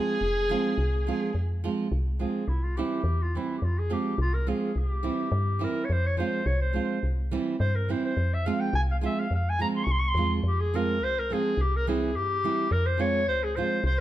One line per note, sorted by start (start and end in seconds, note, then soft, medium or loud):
0.00 0.16 F3 medium
0.00 0.17 G#3 medium
0.00 0.17 C4 medium
0.00 0.18 F4 medium
0.00 1.08 G#4 medium
0.00 1.09 G#4 loud
0.21 0.55 F1 medium
0.49 0.73 F3 medium
0.49 0.73 G#3 medium
0.49 0.74 C4 medium
0.49 0.74 F4 loud
0.78 1.12 C2 loud
1.07 1.30 F3 medium
1.07 1.30 G#3 medium
1.07 1.30 C4 medium
1.07 1.31 F4 medium
1.11 1.35 G#4 medium
1.11 1.36 G#4 medium
1.34 1.69 F2 medium
1.64 1.87 F3 medium
1.64 1.87 G#3 medium
1.64 1.87 C4 medium
1.64 1.87 F4 medium
1.92 2.26 C2 loud
2.19 2.43 F3 medium
2.19 2.43 G#3 medium
2.19 2.43 C4 soft
2.19 2.44 F4 medium
2.19 2.50 G#4 medium
2.48 2.82 C2 medium
2.48 2.64 E4 medium
2.63 2.78 F4 medium
2.77 3.00 E3 medium
2.77 3.00 G3 medium
2.77 3.01 C4 medium
2.77 3.01 E4 medium
2.77 3.24 G4 medium
3.04 3.38 E2 loud
3.22 3.38 F4 medium
3.35 3.58 E3 medium
3.35 3.58 G3 medium
3.35 3.58 C4 medium
3.35 3.57 E4 medium
3.35 3.59 E4 medium
3.58 3.66 G4 medium
3.62 3.96 F2 medium
3.62 3.80 F4 medium
3.79 3.95 G#4 medium
3.90 4.13 F3 medium
3.90 4.14 G#3 medium
3.90 4.14 C4 medium
3.90 4.14 F4 medium
3.90 4.21 G4 medium
4.18 4.53 C2 loud
4.18 4.36 F4 medium
4.34 4.50 A#4 medium
4.47 4.70 F3 medium
4.47 4.70 G#3 medium
4.47 4.71 C4 medium
4.47 4.71 F4 medium
4.47 4.79 G#4 medium
4.76 5.10 C2 medium
4.76 5.66 G4 medium
5.03 5.27 E3 medium
5.03 5.27 G3 medium
5.03 5.27 C4 medium
5.03 5.28 E4 medium
5.32 5.66 G2 loud
5.59 5.83 E3 medium
5.59 5.84 G3 medium
5.59 5.84 C4 medium
5.59 5.84 E4 medium
5.64 5.86 A#4 medium
5.85 5.94 C#5 medium
5.90 6.24 F2 loud
5.90 6.08 C5 loud
6.06 6.18 C#5 medium
6.17 6.41 F3 medium
6.17 6.41 G#3 medium
6.17 6.42 C4 medium
6.17 6.42 F4 medium
6.17 6.48 C5 medium
6.46 6.80 C2 loud
6.46 6.61 C#5 loud
6.62 7.14 C5 medium
6.73 6.97 F3 medium
6.73 6.98 G#3 medium
6.73 6.98 C4 medium
6.73 6.99 F4 medium
7.03 7.37 C2 medium
7.31 7.55 E3 medium
7.31 7.55 G3 medium
7.31 7.55 C4 medium
7.31 7.55 E4 medium
7.60 7.94 G2 loud
7.60 7.77 C5 medium
7.75 7.92 A#4 medium
7.89 8.12 E3 medium
7.89 8.12 G3 medium
7.89 8.12 C4 medium
7.89 8.13 E4 medium
7.89 8.04 C5 medium
8.05 8.35 C5 medium
8.17 8.51 F2 medium
8.34 8.48 E5 medium
8.46 8.69 F3 medium
8.46 8.69 G#3 medium
8.46 8.69 C4 medium
8.46 8.70 F4 medium
8.46 8.62 F5 medium
8.61 8.75 G5 medium
8.73 9.08 C2 loud
8.73 8.82 G#5 loud
8.91 8.97 F5 medium
9.01 9.25 F3 medium
9.01 9.25 G#3 medium
9.01 9.26 C4 medium
9.01 9.26 F4 medium
9.05 9.21 E5 medium
9.19 9.32 F5 medium
9.31 9.65 F2 medium
9.35 9.51 F5 medium
9.49 9.61 G#5 loud
9.59 9.82 F3 medium
9.59 9.83 G#3 medium
9.59 9.83 C4 medium
9.59 9.83 F4 medium
9.59 9.67 A#5 loud
9.77 9.85 C6 medium
9.84 10.13 C2 loud
9.84 9.93 C#6 medium
9.91 10.00 C6 loud
9.99 10.10 C#6 loud
10.08 10.32 C6 loud
10.14 10.41 E2 medium
10.14 10.39 F3 medium
10.14 10.40 G#3 medium
10.14 10.40 C4 medium
10.19 10.40 F4 medium
10.43 11.02 F2 medium
10.48 10.62 G4 medium
10.60 10.77 G#4 medium
10.74 10.96 F3 medium
10.74 10.97 G#3 medium
10.74 10.96 C4 medium
10.74 10.97 F4 medium
10.74 11.05 A#4 loud
11.00 11.34 C2 medium
11.00 11.20 C5 loud
11.19 11.35 A#4 loud
11.30 11.53 F3 medium
11.30 11.53 G#3 medium
11.30 11.53 C4 medium
11.30 11.54 F4 medium
11.30 11.63 G#4 loud
11.57 12.15 C2 medium
11.61 11.78 G4 medium
11.76 11.88 A#4 loud
11.87 12.09 E3 medium
11.87 12.09 G3 medium
11.87 12.10 C4 medium
11.87 12.10 E4 medium
11.87 12.18 G#4 medium
12.14 12.48 G2 loud
12.14 12.74 G4 loud
12.44 12.66 E3 medium
12.44 12.66 G3 medium
12.44 12.67 C4 medium
12.44 12.67 E4 medium
12.71 13.30 F2 medium
12.71 12.87 A#4 loud
12.86 13.02 C5 loud
12.98 13.21 F3 medium
12.98 13.22 G#3 medium
12.98 13.22 C4 medium
12.98 13.22 F4 medium
12.98 13.28 C#5 loud
13.28 13.62 C#2 loud
13.28 13.45 C5 loud
13.43 13.58 G#4 medium
13.56 13.79 F3 medium
13.56 13.80 G#3 medium
13.56 13.80 C4 medium
13.56 13.80 F4 medium
13.56 13.84 C5 loud
13.84 14.00 C2 loud
13.84 14.00 C5 loud
13.84 14.00 C5 medium